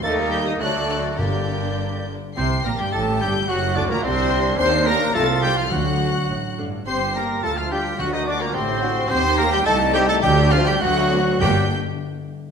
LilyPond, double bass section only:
\new Staff \with { instrumentName = "Double bass section" } { \clef bass \time 2/4 \key g \minor \tempo 4 = 106 ees,4 d,4 | g,,4. r8 | c,8 bes,,16 r16 a,,8 g,,8 | fis,,8 d,16 r16 c,4 |
ees,4 c,4 | d,4 a,,4 | g,,4 d,4 | d,4 a,,4 |
ees,4 c,4 | d,4 d,4 | g,,8 r4. | }